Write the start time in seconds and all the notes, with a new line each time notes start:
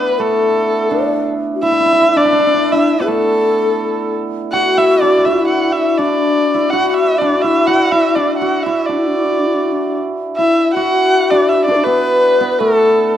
Already playing: A3 B3 D4 E4 B4
0.19 A3 A4
0.90 D4 D5
1.55 F#4
1.62 E4 E5
1.72 E4
1.80 E4
1.86 E4
1.92 E4
2.01 E4
2.16 D4 D5
2.25 D4
2.32 D4
2.39 D4
2.47 D4
2.54 D4
2.72 E4 E5
3.00 B3 B4
3.06 A3 A4
4.53 F#4 F#5
4.78 E4 E5
5.01 D4 D5
5.19 F#4
5.25 E4 E5
5.48 F#5
5.73 E4 E5
5.98 D4 D5
6.54 E4
6.70 F#4 F#5
6.90 F#5
6.94 E5
7.19 D4 D5
7.38 F#4
7.42 E4 E5
7.67 F#4 F#5
7.92 E4 E5
8.15 D4 D5
8.38 F#4 F#5
8.63 E4 E5
8.86 D4 D5
8.91 D4
8.99 E4
9.07 D4
9.16 E4
9.23 D4
9.30 E4
9.40 D4
9.47 E4
9.55 D4
9.63 E4
9.72 D4
10.37 E4 E5
10.74 F#4 F#5
11.30 D4 D5
11.49 E5
11.66 D4 D5
11.71 B4
11.76 D4
11.84 B3 B4
12.40 B3
12.52 B4
12.59 A3 A4